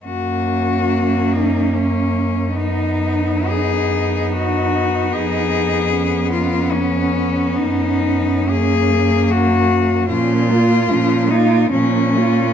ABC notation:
X:1
M:3/4
L:1/8
Q:1/4=73
K:F#
V:1 name="Cello"
F3 D C2 | D2 G2 F2 | G3 E C2 | D2 G2 F2 |
[K:Bbm] F3 E D2 |]
V:2 name="Cello"
C6 | D6- | D2 C4- | C6 |
[K:Bbm] D F D F D F |]
V:3 name="Cello"
A,6 | B,6- | B,6- | B,2 A,4 |
[K:Bbm] F, B, F, B, F, B, |]
V:4 name="Cello" clef=bass
F,,6- | F,,6 | E,,6 | F,,6 |
[K:Bbm] B,,2 B,,2 B,,2 |]